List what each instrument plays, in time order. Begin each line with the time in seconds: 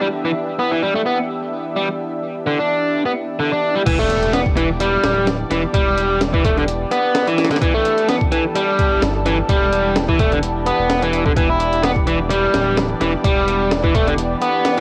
Already playing: analog synth pad E3 B3 D4 G4 E5
0.01 overdriven electric guitar G3
0.25 overdriven electric guitar E3
0.59 overdriven electric guitar B3
0.72 overdriven electric guitar E3
0.83 overdriven electric guitar G3
0.95 overdriven electric guitar A3
1.06 overdriven electric guitar B3
1.76 overdriven electric guitar G3
2.46 overdriven electric guitar D3
2.59 overdriven electric guitar D4
3.05 overdriven electric guitar B3
3.39 overdriven electric guitar D3
3.52 overdriven electric guitar D4
3.75 overdriven electric guitar G3
3.86 sub bass E1, analog synth pad E3 B3 D4 G4 D5, overdriven electric guitar E3, kick, closed hi-hat, crash, impact
3.99 overdriven electric guitar A3
4.10 closed hi-hat
4.23 closed hi-hat
4.33 overdriven electric guitar B3, snare, closed hi-hat
4.46 kick
4.57 overdriven electric guitar E3, closed hi-hat
4.80 overdriven electric guitar G3, closed hi-hat
5.04 sub bass D1, snare, closed hi-hat
5.27 snare, closed hi-hat
5.51 sub bass E1, overdriven electric guitar E3, snare, closed hi-hat
5.74 sub bass E1, overdriven electric guitar G3, kick, closed hi-hat
5.98 closed hi-hat
6.21 snare, closed hi-hat
6.34 overdriven electric guitar E3, kick
6.45 overdriven electric guitar A3, kick, closed hi-hat
6.57 overdriven electric guitar D3, closed hi-hat
6.68 closed hi-hat
6.91 overdriven electric guitar B3, closed hi-hat
7.15 snare, closed hi-hat
7.27 overdriven electric guitar E3, closed hi-hat
7.38 snare, closed hi-hat
7.45 snare, closed hi-hat
7.51 overdriven electric guitar D3, snare, closed hi-hat
7.56 snare, closed hi-hat
7.62 overdriven electric guitar E3, analog synth pad A4, kick, closed hi-hat
7.74 overdriven electric guitar A3
7.85 closed hi-hat
7.98 closed hi-hat
8.08 overdriven electric guitar B3, snare, closed hi-hat
8.21 kick
8.32 overdriven electric guitar E3, closed hi-hat
8.55 overdriven electric guitar G3, closed hi-hat
8.79 kick, closed hi-hat
8.91 sub bass G1
9.02 sub bass G1, snare, closed hi-hat
9.26 overdriven electric guitar E3, snare, closed hi-hat
9.49 sub bass E1, overdriven electric guitar G3, kick, closed hi-hat
9.73 closed hi-hat
9.96 snare, closed hi-hat
10.09 overdriven electric guitar E3, kick
10.19 sub bass E1, overdriven electric guitar A3, kick, closed hi-hat
10.32 overdriven electric guitar D3, closed hi-hat
10.43 closed hi-hat
10.66 overdriven electric guitar B3, closed hi-hat
10.79 sub bass E1
10.90 snare, closed hi-hat
11.02 overdriven electric guitar E3, closed hi-hat
11.13 closed hi-hat
11.26 overdriven electric guitar D3, kick
11.36 sub bass E1, overdriven electric guitar E3, analog synth pad D5, kick, closed hi-hat
11.50 overdriven electric guitar E4
11.60 closed hi-hat
11.73 closed hi-hat
11.84 overdriven electric guitar B3, snare, closed hi-hat
11.96 kick
12.07 overdriven electric guitar E3, closed hi-hat
12.30 overdriven electric guitar G3, closed hi-hat
12.54 sub bass D1, snare, closed hi-hat
12.77 snare, closed hi-hat
13.01 sub bass E1, overdriven electric guitar E3, snare, closed hi-hat
13.24 sub bass E1, overdriven electric guitar G3, kick, closed hi-hat
13.48 closed hi-hat
13.71 snare, closed hi-hat
13.84 overdriven electric guitar E3, kick
13.95 overdriven electric guitar A3, kick, closed hi-hat
14.07 overdriven electric guitar D3, closed hi-hat
14.18 closed hi-hat
14.42 overdriven electric guitar B3, closed hi-hat
14.65 snare, closed hi-hat